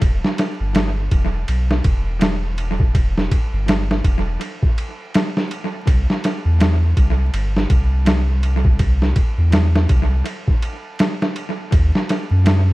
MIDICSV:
0, 0, Header, 1, 3, 480
1, 0, Start_track
1, 0, Tempo, 731707
1, 12, Time_signature, 4, 2, 24, 8
1, 8351, End_track
2, 0, Start_track
2, 0, Title_t, "Sub bass"
2, 0, Program_c, 0, 38
2, 11, Note_on_c, 0, 28, 96
2, 137, Note_off_c, 0, 28, 0
2, 395, Note_on_c, 0, 31, 79
2, 714, Note_off_c, 0, 31, 0
2, 732, Note_on_c, 0, 28, 84
2, 949, Note_off_c, 0, 28, 0
2, 973, Note_on_c, 0, 35, 87
2, 1189, Note_off_c, 0, 35, 0
2, 1211, Note_on_c, 0, 28, 89
2, 2153, Note_off_c, 0, 28, 0
2, 2317, Note_on_c, 0, 31, 80
2, 2634, Note_off_c, 0, 31, 0
2, 2653, Note_on_c, 0, 28, 84
2, 2869, Note_off_c, 0, 28, 0
2, 3853, Note_on_c, 0, 36, 94
2, 3978, Note_off_c, 0, 36, 0
2, 4233, Note_on_c, 0, 40, 86
2, 4553, Note_off_c, 0, 40, 0
2, 4572, Note_on_c, 0, 36, 89
2, 4789, Note_off_c, 0, 36, 0
2, 4810, Note_on_c, 0, 31, 93
2, 5028, Note_off_c, 0, 31, 0
2, 5050, Note_on_c, 0, 36, 87
2, 5992, Note_off_c, 0, 36, 0
2, 6153, Note_on_c, 0, 40, 79
2, 6473, Note_off_c, 0, 40, 0
2, 6491, Note_on_c, 0, 36, 92
2, 6708, Note_off_c, 0, 36, 0
2, 7692, Note_on_c, 0, 39, 90
2, 7817, Note_off_c, 0, 39, 0
2, 8074, Note_on_c, 0, 42, 88
2, 8351, Note_off_c, 0, 42, 0
2, 8351, End_track
3, 0, Start_track
3, 0, Title_t, "Drums"
3, 11, Note_on_c, 9, 36, 99
3, 11, Note_on_c, 9, 51, 73
3, 77, Note_off_c, 9, 36, 0
3, 77, Note_off_c, 9, 51, 0
3, 161, Note_on_c, 9, 38, 38
3, 226, Note_off_c, 9, 38, 0
3, 251, Note_on_c, 9, 51, 63
3, 258, Note_on_c, 9, 38, 47
3, 317, Note_off_c, 9, 51, 0
3, 323, Note_off_c, 9, 38, 0
3, 490, Note_on_c, 9, 51, 74
3, 497, Note_on_c, 9, 38, 101
3, 556, Note_off_c, 9, 51, 0
3, 563, Note_off_c, 9, 38, 0
3, 731, Note_on_c, 9, 51, 57
3, 732, Note_on_c, 9, 36, 84
3, 796, Note_off_c, 9, 51, 0
3, 797, Note_off_c, 9, 36, 0
3, 971, Note_on_c, 9, 51, 80
3, 1037, Note_off_c, 9, 51, 0
3, 1119, Note_on_c, 9, 38, 44
3, 1185, Note_off_c, 9, 38, 0
3, 1209, Note_on_c, 9, 51, 65
3, 1211, Note_on_c, 9, 36, 88
3, 1275, Note_off_c, 9, 51, 0
3, 1277, Note_off_c, 9, 36, 0
3, 1450, Note_on_c, 9, 51, 81
3, 1457, Note_on_c, 9, 38, 104
3, 1516, Note_off_c, 9, 51, 0
3, 1522, Note_off_c, 9, 38, 0
3, 1692, Note_on_c, 9, 51, 58
3, 1757, Note_off_c, 9, 51, 0
3, 1835, Note_on_c, 9, 36, 94
3, 1901, Note_off_c, 9, 36, 0
3, 1933, Note_on_c, 9, 36, 99
3, 1934, Note_on_c, 9, 51, 78
3, 1999, Note_off_c, 9, 36, 0
3, 1999, Note_off_c, 9, 51, 0
3, 2083, Note_on_c, 9, 38, 37
3, 2149, Note_off_c, 9, 38, 0
3, 2174, Note_on_c, 9, 36, 86
3, 2174, Note_on_c, 9, 51, 66
3, 2239, Note_off_c, 9, 36, 0
3, 2240, Note_off_c, 9, 51, 0
3, 2415, Note_on_c, 9, 51, 80
3, 2422, Note_on_c, 9, 38, 104
3, 2481, Note_off_c, 9, 51, 0
3, 2487, Note_off_c, 9, 38, 0
3, 2564, Note_on_c, 9, 38, 45
3, 2630, Note_off_c, 9, 38, 0
3, 2653, Note_on_c, 9, 36, 84
3, 2654, Note_on_c, 9, 51, 62
3, 2719, Note_off_c, 9, 36, 0
3, 2719, Note_off_c, 9, 51, 0
3, 2892, Note_on_c, 9, 51, 80
3, 2958, Note_off_c, 9, 51, 0
3, 3035, Note_on_c, 9, 36, 93
3, 3101, Note_off_c, 9, 36, 0
3, 3135, Note_on_c, 9, 51, 64
3, 3200, Note_off_c, 9, 51, 0
3, 3374, Note_on_c, 9, 51, 85
3, 3381, Note_on_c, 9, 38, 103
3, 3440, Note_off_c, 9, 51, 0
3, 3447, Note_off_c, 9, 38, 0
3, 3522, Note_on_c, 9, 38, 41
3, 3588, Note_off_c, 9, 38, 0
3, 3615, Note_on_c, 9, 51, 59
3, 3680, Note_off_c, 9, 51, 0
3, 3852, Note_on_c, 9, 36, 98
3, 3853, Note_on_c, 9, 51, 84
3, 3918, Note_off_c, 9, 36, 0
3, 3919, Note_off_c, 9, 51, 0
3, 4002, Note_on_c, 9, 38, 37
3, 4067, Note_off_c, 9, 38, 0
3, 4093, Note_on_c, 9, 51, 63
3, 4100, Note_on_c, 9, 38, 45
3, 4159, Note_off_c, 9, 51, 0
3, 4165, Note_off_c, 9, 38, 0
3, 4332, Note_on_c, 9, 51, 77
3, 4339, Note_on_c, 9, 38, 101
3, 4398, Note_off_c, 9, 51, 0
3, 4405, Note_off_c, 9, 38, 0
3, 4572, Note_on_c, 9, 36, 85
3, 4572, Note_on_c, 9, 51, 61
3, 4637, Note_off_c, 9, 36, 0
3, 4637, Note_off_c, 9, 51, 0
3, 4813, Note_on_c, 9, 51, 84
3, 4878, Note_off_c, 9, 51, 0
3, 4963, Note_on_c, 9, 38, 41
3, 5028, Note_off_c, 9, 38, 0
3, 5051, Note_on_c, 9, 36, 89
3, 5051, Note_on_c, 9, 51, 63
3, 5116, Note_off_c, 9, 51, 0
3, 5117, Note_off_c, 9, 36, 0
3, 5289, Note_on_c, 9, 51, 85
3, 5296, Note_on_c, 9, 38, 108
3, 5355, Note_off_c, 9, 51, 0
3, 5361, Note_off_c, 9, 38, 0
3, 5530, Note_on_c, 9, 51, 60
3, 5596, Note_off_c, 9, 51, 0
3, 5673, Note_on_c, 9, 36, 98
3, 5738, Note_off_c, 9, 36, 0
3, 5768, Note_on_c, 9, 51, 74
3, 5770, Note_on_c, 9, 36, 95
3, 5833, Note_off_c, 9, 51, 0
3, 5835, Note_off_c, 9, 36, 0
3, 5917, Note_on_c, 9, 38, 35
3, 5982, Note_off_c, 9, 38, 0
3, 6008, Note_on_c, 9, 51, 64
3, 6009, Note_on_c, 9, 36, 88
3, 6073, Note_off_c, 9, 51, 0
3, 6075, Note_off_c, 9, 36, 0
3, 6248, Note_on_c, 9, 51, 80
3, 6254, Note_on_c, 9, 38, 100
3, 6313, Note_off_c, 9, 51, 0
3, 6320, Note_off_c, 9, 38, 0
3, 6399, Note_on_c, 9, 38, 50
3, 6465, Note_off_c, 9, 38, 0
3, 6489, Note_on_c, 9, 51, 63
3, 6491, Note_on_c, 9, 36, 85
3, 6555, Note_off_c, 9, 51, 0
3, 6556, Note_off_c, 9, 36, 0
3, 6727, Note_on_c, 9, 51, 83
3, 6793, Note_off_c, 9, 51, 0
3, 6873, Note_on_c, 9, 36, 91
3, 6938, Note_off_c, 9, 36, 0
3, 6969, Note_on_c, 9, 51, 61
3, 7035, Note_off_c, 9, 51, 0
3, 7210, Note_on_c, 9, 51, 78
3, 7217, Note_on_c, 9, 38, 100
3, 7276, Note_off_c, 9, 51, 0
3, 7282, Note_off_c, 9, 38, 0
3, 7362, Note_on_c, 9, 38, 45
3, 7427, Note_off_c, 9, 38, 0
3, 7451, Note_on_c, 9, 51, 60
3, 7517, Note_off_c, 9, 51, 0
3, 7691, Note_on_c, 9, 36, 102
3, 7691, Note_on_c, 9, 51, 82
3, 7756, Note_off_c, 9, 51, 0
3, 7757, Note_off_c, 9, 36, 0
3, 7841, Note_on_c, 9, 38, 39
3, 7907, Note_off_c, 9, 38, 0
3, 7933, Note_on_c, 9, 51, 63
3, 7940, Note_on_c, 9, 38, 45
3, 7999, Note_off_c, 9, 51, 0
3, 8005, Note_off_c, 9, 38, 0
3, 8172, Note_on_c, 9, 51, 81
3, 8179, Note_on_c, 9, 38, 103
3, 8238, Note_off_c, 9, 51, 0
3, 8244, Note_off_c, 9, 38, 0
3, 8351, End_track
0, 0, End_of_file